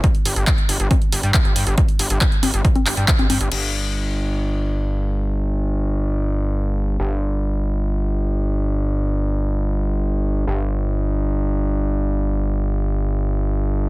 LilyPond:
<<
  \new Staff \with { instrumentName = "Analog synth bass" } { \clef bass \time 4/4 \key c \dorian \tempo 4 = 138 r8 g,,16 g,,16 r8 g,,16 g,,16 r8 g,,16 g,16 r16 g,,16 g,16 g,,16 | r8 g,,16 g,,16 r8 g,,16 g,,16 r8 g,,16 g,16 r16 g,,16 g,16 g,,16 | g,,1~ | g,,1 |
g,,1~ | g,,1 | g,,1~ | g,,1 | }
  \new DrumStaff \with { instrumentName = "Drums" } \drummode { \time 4/4 <hh bd>16 hh16 hho16 hh16 <hc hh bd>16 hh16 hho16 hh16 <cgho hh bd>16 hh16 hho16 hh16 <hc hh bd>16 hh16 hho16 hh16 | <hh bd>16 hh16 hho16 hh16 <hc hh bd>16 hh16 <cgho hho>16 hh16 <hh bd>16 <cgho hh>16 <hc hho>16 hh16 <hc hh bd>16 <cgho hh>16 <cgho hho>16 hh16 | cymc4 r4 r4 r4 | r4 r4 r4 r4 |
r4 r4 r4 r4 | r4 r4 r4 r4 | r4 r4 r4 r4 | r4 r4 r4 r4 | }
>>